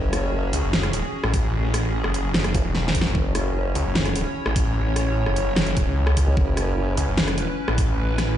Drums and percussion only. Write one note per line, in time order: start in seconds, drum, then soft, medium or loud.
0.13 cross-stick medium
0.13 closed hi-hat medium
0.53 closed hi-hat medium
0.73 snare loud
0.83 cross-stick medium
0.83 closed hi-hat soft
0.93 closed hi-hat medium
1.24 cross-stick medium
1.34 kick loud
1.34 closed hi-hat medium
1.74 cross-stick medium
1.74 closed hi-hat medium
2.04 cross-stick medium
2.14 closed hi-hat medium
2.34 snare loud
2.44 cross-stick medium
2.44 closed hi-hat soft
2.54 kick loud
2.54 closed hi-hat medium
2.75 snare medium
2.88 snare medium
2.95 kick medium
2.95 closed hi-hat medium
3.01 snare medium
3.15 kick loud
3.35 cross-stick medium
3.35 closed hi-hat medium
3.75 closed hi-hat medium
3.95 snare loud
4.05 cross-stick medium
4.05 closed hi-hat soft
4.16 closed hi-hat medium
4.46 cross-stick medium
4.56 kick loud
4.56 closed hi-hat medium
4.96 cross-stick medium
4.96 closed hi-hat medium
5.26 cross-stick medium
5.36 closed hi-hat medium
5.56 snare loud
5.67 closed hi-hat soft
5.77 kick loud
5.77 closed hi-hat medium
6.07 cross-stick medium
6.17 kick medium
6.17 closed hi-hat medium
6.37 kick loud
6.57 cross-stick medium
6.57 closed hi-hat medium
6.97 closed hi-hat medium
7.18 snare loud
7.28 cross-stick medium
7.28 closed hi-hat soft
7.38 closed hi-hat medium
7.68 cross-stick medium
7.78 kick loud
7.78 closed hi-hat medium
8.18 cross-stick medium
8.18 snare medium
8.18 closed hi-hat medium